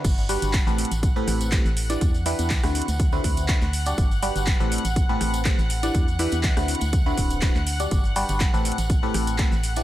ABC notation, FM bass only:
X:1
M:4/4
L:1/16
Q:"Swing 16ths" 1/4=122
K:Ador
V:1 name="FM bass" clef=bass
G,,,3 G,,,2 A,,,2 A,,,3 A,,,3 A,,,3 | E,,3 E,,2 D,,2 D,,3 D,,3 D,,3 | G,,,3 G,,,2 A,,,2 A,,,3 A,,,3 A,,,3 | E,,3 E,,2 D,,2 D,,3 D,,,3 D,,3 |
G,,,3 G,,,2 A,,,2 A,,,3 A,,,3 A,,,3 |]